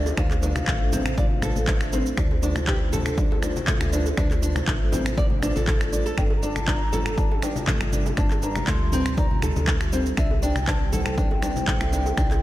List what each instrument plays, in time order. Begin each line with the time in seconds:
Already playing: fm bass D2, analog synth pad A3 D4 F4 C5, bansuri D5
0.06 high bongo, cabasa
0.17 fm bass D2, nylon-string guitar D4, bansuri F5, finger snap, kick, low bongo, cabasa
0.31 clap, high bongo, cabasa
0.43 nylon-string guitar D4, low bongo, cabasa
0.55 finger snap, high conga, cabasa
0.67 fm bass A1, nylon-string guitar A3, kick, clap, low bongo, cabasa
0.93 nylon-string guitar C4, low bongo, high conga, low conga, cabasa
1.06 finger snap, cabasa
1.18 nylon-string guitar D5, kick, low bongo, high conga, low conga, cabasa
1.31 high conga
1.42 fm bass A1, nylon-string guitar A4, finger snap, low bongo, cabasa
1.56 fm bass A1, high conga, cabasa
1.67 nylon-string guitar A3, kick, clap, low bongo, cabasa
1.80 finger snap, high conga, cabasa
1.93 nylon-string guitar C4, low bongo, cabasa
2.06 cabasa
2.17 fm bass D2, nylon-string guitar D4, finger snap, kick, low bongo, cabasa
2.31 high bongo
2.43 nylon-string guitar D4, low bongo, cabasa
2.55 finger snap, high conga, cabasa
2.67 nylon-string guitar G4, kick, clap, low bongo, cabasa
2.93 nylon-string guitar A4, low bongo, high conga, low conga, cabasa
3.06 finger snap, cabasa
3.18 nylon-string guitar D4, kick, low bongo, cabasa
3.32 high bongo
3.42 nylon-string guitar D4, finger snap, low bongo, cabasa
3.56 high conga, cabasa
3.67 nylon-string guitar A3, kick, clap, low bongo, high conga, low conga, cabasa
3.81 fm bass D2, finger snap, cabasa
3.93 nylon-string guitar D4, low bongo, cabasa
4.06 high bongo, cabasa
4.17 fm bass D2, nylon-string guitar D4, finger snap, kick, low bongo, cabasa
4.31 clap, high bongo, cabasa
4.42 nylon-string guitar D4, low bongo, cabasa
4.56 finger snap, high conga, cabasa
4.68 fm bass A1, nylon-string guitar A3, kick, clap, low bongo, cabasa
4.92 nylon-string guitar C4, low bongo, high conga, low conga, cabasa
5.06 finger snap, cabasa
5.17 nylon-string guitar D5, kick, low bongo, high conga, low conga, cabasa
5.30 high conga
5.42 fm bass A1, nylon-string guitar D4, finger snap, low bongo, cabasa
5.56 fm bass A1, nylon-string guitar A4, high conga, cabasa
5.67 nylon-string guitar A4, kick, clap, low bongo, cabasa
5.81 finger snap, high conga, cabasa
5.93 nylon-string guitar D5, low bongo, cabasa
6.06 nylon-string guitar A4, cabasa
6.18 fm bass G1, analog synth pad G3 D4, nylon-string guitar D4, bansuri G5, finger snap, kick, low bongo, cabasa
6.30 high bongo
6.37 bansuri A#5
6.43 nylon-string guitar D4, bansuri A5 A#5, low bongo, cabasa
6.56 finger snap, high conga, cabasa
6.67 nylon-string guitar D4, bansuri A#5, kick, clap, low bongo, cabasa
6.93 nylon-string guitar A4, low bongo, low conga, cabasa
7.06 finger snap, cabasa
7.17 nylon-string guitar D4, bansuri A5, kick, low bongo, cabasa
7.32 high bongo
7.42 nylon-string guitar D4, bansuri G5, finger snap, low bongo, cabasa
7.56 high conga, cabasa
7.67 nylon-string guitar A3, kick, clap, low bongo, high conga, low conga, cabasa
7.81 fm bass G1, finger snap, cabasa
7.93 nylon-string guitar D4, low bongo, high conga, cabasa
8.06 high bongo, cabasa
8.17 fm bass G1, nylon-string guitar D4, bansuri A5, finger snap, kick, low bongo, cabasa
8.31 clap, high bongo, cabasa
8.43 nylon-string guitar D4, bansuri A#5, low bongo, cabasa
8.56 finger snap, high conga, cabasa
8.67 fm bass D2, nylon-string guitar A3, bansuri C6, kick, clap, low bongo, cabasa
8.92 nylon-string guitar C4, low bongo, high conga, low conga, cabasa
9.06 finger snap, cabasa
9.17 nylon-string guitar D5, bansuri A#5, kick, low bongo, high conga, low conga, cabasa
9.31 high conga
9.42 fm bass D2, nylon-string guitar A4, bansuri A5, finger snap, low bongo, cabasa
9.56 fm bass D2, high conga, cabasa
9.67 nylon-string guitar A3, kick, clap, low bongo, cabasa
9.81 finger snap, high conga, cabasa
9.93 nylon-string guitar C4, low bongo, cabasa
10.06 cabasa
10.17 fm bass C2, analog synth pad C4 E4 C5, nylon-string guitar D4, bansuri E5, finger snap, kick, low bongo, cabasa
10.31 high bongo
10.42 nylon-string guitar D4, bansuri G5, low bongo, cabasa
10.56 finger snap, high conga, cabasa
10.67 nylon-string guitar D4, bansuri A5, kick, clap, low bongo, cabasa
10.86 bansuri A5
10.93 nylon-string guitar A4, bansuri G5, low bongo, high conga, low conga, cabasa
11.06 finger snap, cabasa
11.18 nylon-string guitar D4, kick, low bongo, cabasa
11.31 high bongo
11.42 nylon-string guitar D4, finger snap, low bongo, cabasa
11.56 high conga, cabasa
11.67 nylon-string guitar A3, kick, clap, low bongo, high conga, low conga, cabasa
11.81 fm bass C2, finger snap, cabasa
11.92 nylon-string guitar D4, low bongo, cabasa
12.06 high bongo, cabasa
12.18 fm bass C2, nylon-string guitar D4, finger snap, kick, low bongo, cabasa
12.31 clap, high bongo, cabasa